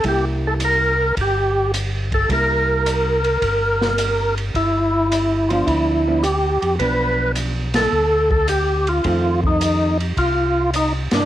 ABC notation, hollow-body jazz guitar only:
X:1
M:4/4
L:1/8
Q:"Swing" 1/4=107
K:Cmix
V:1 name="Hollow-body jazz guitar"
[G,B,E]3 z4 z | [G,B,E]3 z4 z | z3 [F,=B,D]2 [F,B,D] z2 | [F,=B,D]3 z4 z |
[_E,A,C]3 z4 z |]